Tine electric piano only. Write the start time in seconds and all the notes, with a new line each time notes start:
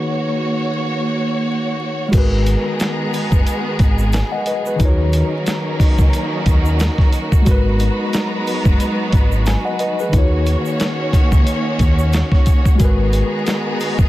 Already playing: D#3 D#4 F#4 G#4 B4 C#5
2.08 G#3 F#4
2.15 A#4 B4
4.14 G#5
4.32 D#5 F#5
4.47 B4 D#5
4.67 G#4 B4
4.76 D#3 D#4
4.82 F4 C#5
4.88 F#4
7.42 G#3 F#4
7.48 A#4 B4
9.47 G#5
9.65 D#5 F#5
9.80 B4 D#5
10.00 G#4 B4
10.09 D#3 D#4
10.15 F4 C#5
10.22 F#4
12.75 G#3 F#4
12.82 A#4 B4